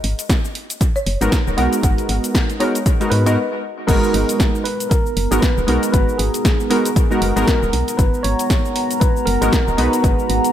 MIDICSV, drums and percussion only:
0, 0, Header, 1, 2, 480
1, 0, Start_track
1, 0, Key_signature, 5, "minor"
1, 0, Tempo, 512821
1, 1717, Time_signature, 4, 2, 24, 8
1, 9850, End_track
2, 0, Start_track
2, 0, Title_t, "Drums"
2, 36, Note_on_c, 9, 46, 102
2, 130, Note_off_c, 9, 46, 0
2, 176, Note_on_c, 9, 42, 54
2, 179, Note_on_c, 9, 69, 70
2, 270, Note_off_c, 9, 42, 0
2, 273, Note_off_c, 9, 69, 0
2, 276, Note_on_c, 9, 36, 106
2, 277, Note_on_c, 9, 38, 110
2, 277, Note_on_c, 9, 42, 66
2, 280, Note_on_c, 9, 69, 55
2, 370, Note_off_c, 9, 36, 0
2, 370, Note_off_c, 9, 38, 0
2, 370, Note_off_c, 9, 42, 0
2, 373, Note_off_c, 9, 69, 0
2, 419, Note_on_c, 9, 69, 35
2, 513, Note_off_c, 9, 69, 0
2, 517, Note_on_c, 9, 46, 95
2, 610, Note_off_c, 9, 46, 0
2, 656, Note_on_c, 9, 42, 55
2, 659, Note_on_c, 9, 69, 70
2, 750, Note_off_c, 9, 42, 0
2, 753, Note_off_c, 9, 69, 0
2, 756, Note_on_c, 9, 36, 108
2, 757, Note_on_c, 9, 42, 67
2, 760, Note_on_c, 9, 69, 59
2, 850, Note_off_c, 9, 36, 0
2, 850, Note_off_c, 9, 42, 0
2, 853, Note_off_c, 9, 69, 0
2, 899, Note_on_c, 9, 69, 35
2, 993, Note_off_c, 9, 69, 0
2, 997, Note_on_c, 9, 46, 100
2, 1090, Note_off_c, 9, 46, 0
2, 1136, Note_on_c, 9, 42, 54
2, 1140, Note_on_c, 9, 69, 73
2, 1230, Note_off_c, 9, 42, 0
2, 1233, Note_off_c, 9, 69, 0
2, 1236, Note_on_c, 9, 36, 104
2, 1237, Note_on_c, 9, 38, 118
2, 1237, Note_on_c, 9, 42, 72
2, 1240, Note_on_c, 9, 69, 60
2, 1330, Note_off_c, 9, 36, 0
2, 1330, Note_off_c, 9, 38, 0
2, 1330, Note_off_c, 9, 42, 0
2, 1334, Note_off_c, 9, 69, 0
2, 1379, Note_on_c, 9, 69, 35
2, 1473, Note_off_c, 9, 69, 0
2, 1477, Note_on_c, 9, 46, 98
2, 1570, Note_off_c, 9, 46, 0
2, 1616, Note_on_c, 9, 42, 50
2, 1619, Note_on_c, 9, 69, 69
2, 1710, Note_off_c, 9, 42, 0
2, 1713, Note_off_c, 9, 69, 0
2, 1716, Note_on_c, 9, 36, 104
2, 1717, Note_on_c, 9, 42, 62
2, 1720, Note_on_c, 9, 69, 55
2, 1810, Note_off_c, 9, 36, 0
2, 1810, Note_off_c, 9, 42, 0
2, 1814, Note_off_c, 9, 69, 0
2, 1856, Note_on_c, 9, 42, 36
2, 1860, Note_on_c, 9, 69, 32
2, 1950, Note_off_c, 9, 42, 0
2, 1953, Note_off_c, 9, 69, 0
2, 1957, Note_on_c, 9, 46, 105
2, 2051, Note_off_c, 9, 46, 0
2, 2097, Note_on_c, 9, 42, 53
2, 2100, Note_on_c, 9, 69, 65
2, 2190, Note_off_c, 9, 42, 0
2, 2193, Note_off_c, 9, 69, 0
2, 2196, Note_on_c, 9, 36, 108
2, 2197, Note_on_c, 9, 38, 122
2, 2197, Note_on_c, 9, 42, 65
2, 2200, Note_on_c, 9, 69, 58
2, 2290, Note_off_c, 9, 36, 0
2, 2291, Note_off_c, 9, 38, 0
2, 2291, Note_off_c, 9, 42, 0
2, 2294, Note_off_c, 9, 69, 0
2, 2336, Note_on_c, 9, 42, 39
2, 2340, Note_on_c, 9, 69, 35
2, 2430, Note_off_c, 9, 42, 0
2, 2433, Note_off_c, 9, 69, 0
2, 2437, Note_on_c, 9, 46, 101
2, 2530, Note_off_c, 9, 46, 0
2, 2576, Note_on_c, 9, 42, 55
2, 2580, Note_on_c, 9, 69, 69
2, 2670, Note_off_c, 9, 42, 0
2, 2673, Note_off_c, 9, 69, 0
2, 2676, Note_on_c, 9, 36, 114
2, 2677, Note_on_c, 9, 42, 71
2, 2680, Note_on_c, 9, 69, 57
2, 2770, Note_off_c, 9, 36, 0
2, 2770, Note_off_c, 9, 42, 0
2, 2774, Note_off_c, 9, 69, 0
2, 2816, Note_on_c, 9, 42, 39
2, 2820, Note_on_c, 9, 69, 34
2, 2910, Note_off_c, 9, 42, 0
2, 2913, Note_off_c, 9, 69, 0
2, 2917, Note_on_c, 9, 46, 107
2, 3010, Note_off_c, 9, 46, 0
2, 3056, Note_on_c, 9, 42, 55
2, 3059, Note_on_c, 9, 69, 69
2, 3149, Note_off_c, 9, 42, 0
2, 3153, Note_off_c, 9, 69, 0
2, 3636, Note_on_c, 9, 36, 118
2, 3637, Note_on_c, 9, 42, 62
2, 3637, Note_on_c, 9, 49, 93
2, 3640, Note_on_c, 9, 69, 53
2, 3730, Note_off_c, 9, 36, 0
2, 3730, Note_off_c, 9, 42, 0
2, 3730, Note_off_c, 9, 49, 0
2, 3734, Note_off_c, 9, 69, 0
2, 3780, Note_on_c, 9, 69, 32
2, 3873, Note_off_c, 9, 69, 0
2, 3877, Note_on_c, 9, 46, 111
2, 3970, Note_off_c, 9, 46, 0
2, 4016, Note_on_c, 9, 42, 53
2, 4020, Note_on_c, 9, 69, 67
2, 4110, Note_off_c, 9, 42, 0
2, 4113, Note_off_c, 9, 69, 0
2, 4116, Note_on_c, 9, 36, 118
2, 4117, Note_on_c, 9, 38, 120
2, 4117, Note_on_c, 9, 42, 68
2, 4120, Note_on_c, 9, 69, 57
2, 4210, Note_off_c, 9, 36, 0
2, 4210, Note_off_c, 9, 38, 0
2, 4210, Note_off_c, 9, 42, 0
2, 4214, Note_off_c, 9, 69, 0
2, 4260, Note_on_c, 9, 69, 34
2, 4353, Note_off_c, 9, 69, 0
2, 4356, Note_on_c, 9, 46, 100
2, 4450, Note_off_c, 9, 46, 0
2, 4496, Note_on_c, 9, 42, 55
2, 4500, Note_on_c, 9, 69, 69
2, 4590, Note_off_c, 9, 42, 0
2, 4593, Note_off_c, 9, 69, 0
2, 4596, Note_on_c, 9, 36, 115
2, 4597, Note_on_c, 9, 42, 69
2, 4600, Note_on_c, 9, 69, 55
2, 4690, Note_off_c, 9, 36, 0
2, 4690, Note_off_c, 9, 42, 0
2, 4694, Note_off_c, 9, 69, 0
2, 4740, Note_on_c, 9, 69, 33
2, 4833, Note_off_c, 9, 69, 0
2, 4837, Note_on_c, 9, 46, 106
2, 4930, Note_off_c, 9, 46, 0
2, 4976, Note_on_c, 9, 42, 55
2, 4980, Note_on_c, 9, 69, 70
2, 5070, Note_off_c, 9, 42, 0
2, 5073, Note_off_c, 9, 69, 0
2, 5076, Note_on_c, 9, 36, 121
2, 5077, Note_on_c, 9, 38, 124
2, 5077, Note_on_c, 9, 42, 71
2, 5080, Note_on_c, 9, 69, 57
2, 5170, Note_off_c, 9, 36, 0
2, 5170, Note_off_c, 9, 38, 0
2, 5170, Note_off_c, 9, 42, 0
2, 5173, Note_off_c, 9, 69, 0
2, 5220, Note_on_c, 9, 69, 33
2, 5313, Note_off_c, 9, 69, 0
2, 5316, Note_on_c, 9, 46, 105
2, 5410, Note_off_c, 9, 46, 0
2, 5456, Note_on_c, 9, 42, 54
2, 5459, Note_on_c, 9, 69, 64
2, 5550, Note_off_c, 9, 42, 0
2, 5553, Note_off_c, 9, 69, 0
2, 5556, Note_on_c, 9, 36, 118
2, 5556, Note_on_c, 9, 42, 64
2, 5560, Note_on_c, 9, 69, 52
2, 5650, Note_off_c, 9, 36, 0
2, 5650, Note_off_c, 9, 42, 0
2, 5653, Note_off_c, 9, 69, 0
2, 5699, Note_on_c, 9, 69, 32
2, 5793, Note_off_c, 9, 69, 0
2, 5797, Note_on_c, 9, 46, 120
2, 5890, Note_off_c, 9, 46, 0
2, 5936, Note_on_c, 9, 42, 54
2, 5939, Note_on_c, 9, 69, 63
2, 6030, Note_off_c, 9, 42, 0
2, 6033, Note_off_c, 9, 69, 0
2, 6036, Note_on_c, 9, 36, 119
2, 6037, Note_on_c, 9, 38, 126
2, 6037, Note_on_c, 9, 42, 65
2, 6040, Note_on_c, 9, 69, 53
2, 6130, Note_off_c, 9, 36, 0
2, 6130, Note_off_c, 9, 38, 0
2, 6130, Note_off_c, 9, 42, 0
2, 6133, Note_off_c, 9, 69, 0
2, 6179, Note_on_c, 9, 69, 32
2, 6273, Note_off_c, 9, 69, 0
2, 6277, Note_on_c, 9, 46, 107
2, 6370, Note_off_c, 9, 46, 0
2, 6416, Note_on_c, 9, 42, 54
2, 6419, Note_on_c, 9, 69, 65
2, 6510, Note_off_c, 9, 42, 0
2, 6513, Note_off_c, 9, 69, 0
2, 6516, Note_on_c, 9, 36, 127
2, 6517, Note_on_c, 9, 42, 67
2, 6520, Note_on_c, 9, 69, 56
2, 6610, Note_off_c, 9, 36, 0
2, 6610, Note_off_c, 9, 42, 0
2, 6613, Note_off_c, 9, 69, 0
2, 6659, Note_on_c, 9, 69, 32
2, 6753, Note_off_c, 9, 69, 0
2, 6756, Note_on_c, 9, 46, 117
2, 6850, Note_off_c, 9, 46, 0
2, 6896, Note_on_c, 9, 42, 51
2, 6899, Note_on_c, 9, 69, 65
2, 6989, Note_off_c, 9, 42, 0
2, 6993, Note_off_c, 9, 69, 0
2, 6996, Note_on_c, 9, 36, 121
2, 6997, Note_on_c, 9, 38, 125
2, 6997, Note_on_c, 9, 42, 68
2, 7000, Note_on_c, 9, 69, 55
2, 7090, Note_off_c, 9, 36, 0
2, 7090, Note_off_c, 9, 38, 0
2, 7090, Note_off_c, 9, 42, 0
2, 7094, Note_off_c, 9, 69, 0
2, 7140, Note_on_c, 9, 69, 33
2, 7233, Note_off_c, 9, 69, 0
2, 7237, Note_on_c, 9, 46, 113
2, 7330, Note_off_c, 9, 46, 0
2, 7376, Note_on_c, 9, 42, 54
2, 7379, Note_on_c, 9, 69, 65
2, 7470, Note_off_c, 9, 42, 0
2, 7473, Note_off_c, 9, 69, 0
2, 7476, Note_on_c, 9, 36, 120
2, 7476, Note_on_c, 9, 42, 61
2, 7480, Note_on_c, 9, 69, 50
2, 7570, Note_off_c, 9, 36, 0
2, 7570, Note_off_c, 9, 42, 0
2, 7573, Note_off_c, 9, 69, 0
2, 7619, Note_on_c, 9, 69, 32
2, 7713, Note_off_c, 9, 69, 0
2, 7716, Note_on_c, 9, 46, 117
2, 7810, Note_off_c, 9, 46, 0
2, 7856, Note_on_c, 9, 42, 50
2, 7859, Note_on_c, 9, 69, 64
2, 7950, Note_off_c, 9, 42, 0
2, 7953, Note_off_c, 9, 69, 0
2, 7956, Note_on_c, 9, 36, 127
2, 7957, Note_on_c, 9, 38, 116
2, 7957, Note_on_c, 9, 42, 64
2, 7960, Note_on_c, 9, 69, 53
2, 8050, Note_off_c, 9, 36, 0
2, 8050, Note_off_c, 9, 38, 0
2, 8050, Note_off_c, 9, 42, 0
2, 8053, Note_off_c, 9, 69, 0
2, 8099, Note_on_c, 9, 69, 33
2, 8193, Note_off_c, 9, 69, 0
2, 8196, Note_on_c, 9, 46, 112
2, 8290, Note_off_c, 9, 46, 0
2, 8336, Note_on_c, 9, 42, 52
2, 8339, Note_on_c, 9, 69, 65
2, 8430, Note_off_c, 9, 42, 0
2, 8433, Note_off_c, 9, 69, 0
2, 8436, Note_on_c, 9, 36, 127
2, 8436, Note_on_c, 9, 42, 65
2, 8440, Note_on_c, 9, 69, 53
2, 8530, Note_off_c, 9, 36, 0
2, 8530, Note_off_c, 9, 42, 0
2, 8533, Note_off_c, 9, 69, 0
2, 8579, Note_on_c, 9, 69, 31
2, 8673, Note_off_c, 9, 69, 0
2, 8676, Note_on_c, 9, 46, 112
2, 8770, Note_off_c, 9, 46, 0
2, 8816, Note_on_c, 9, 42, 53
2, 8819, Note_on_c, 9, 69, 63
2, 8910, Note_off_c, 9, 42, 0
2, 8913, Note_off_c, 9, 69, 0
2, 8916, Note_on_c, 9, 36, 122
2, 8917, Note_on_c, 9, 38, 127
2, 8917, Note_on_c, 9, 42, 71
2, 8920, Note_on_c, 9, 69, 57
2, 9010, Note_off_c, 9, 36, 0
2, 9010, Note_off_c, 9, 38, 0
2, 9010, Note_off_c, 9, 42, 0
2, 9013, Note_off_c, 9, 69, 0
2, 9059, Note_on_c, 9, 69, 34
2, 9153, Note_off_c, 9, 69, 0
2, 9157, Note_on_c, 9, 46, 113
2, 9250, Note_off_c, 9, 46, 0
2, 9297, Note_on_c, 9, 42, 51
2, 9300, Note_on_c, 9, 69, 63
2, 9390, Note_off_c, 9, 42, 0
2, 9393, Note_off_c, 9, 69, 0
2, 9396, Note_on_c, 9, 36, 126
2, 9397, Note_on_c, 9, 42, 58
2, 9400, Note_on_c, 9, 69, 53
2, 9490, Note_off_c, 9, 36, 0
2, 9490, Note_off_c, 9, 42, 0
2, 9494, Note_off_c, 9, 69, 0
2, 9540, Note_on_c, 9, 69, 31
2, 9633, Note_off_c, 9, 69, 0
2, 9637, Note_on_c, 9, 46, 111
2, 9730, Note_off_c, 9, 46, 0
2, 9776, Note_on_c, 9, 42, 52
2, 9780, Note_on_c, 9, 69, 64
2, 9850, Note_off_c, 9, 42, 0
2, 9850, Note_off_c, 9, 69, 0
2, 9850, End_track
0, 0, End_of_file